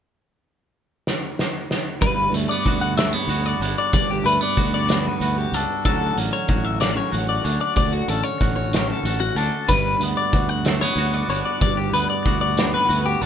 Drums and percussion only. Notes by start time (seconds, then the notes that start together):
1.07 snare
1.39 snare
1.71 snare
2.02 kick, closed hi-hat
2.34 closed hi-hat
2.66 kick, closed hi-hat
2.98 snare, closed hi-hat
3.30 closed hi-hat
3.62 closed hi-hat
3.93 kick, closed hi-hat
4.26 closed hi-hat
4.57 kick, closed hi-hat
4.89 snare, closed hi-hat
5.21 closed hi-hat
5.54 closed hi-hat
5.85 kick, closed hi-hat
6.18 closed hi-hat
6.48 kick, closed hi-hat
6.81 snare, closed hi-hat
7.13 closed hi-hat
7.45 closed hi-hat
7.76 kick, closed hi-hat
8.08 closed hi-hat
8.41 kick, closed hi-hat
8.73 snare, closed hi-hat
9.05 closed hi-hat
9.37 closed hi-hat
9.69 kick, closed hi-hat
10.01 closed hi-hat
10.33 kick, closed hi-hat
10.65 snare, closed hi-hat
10.97 closed hi-hat
11.29 closed hi-hat
11.61 kick, closed hi-hat
11.94 closed hi-hat
12.26 kick, closed hi-hat
12.58 snare, closed hi-hat
12.90 closed hi-hat
13.22 closed hi-hat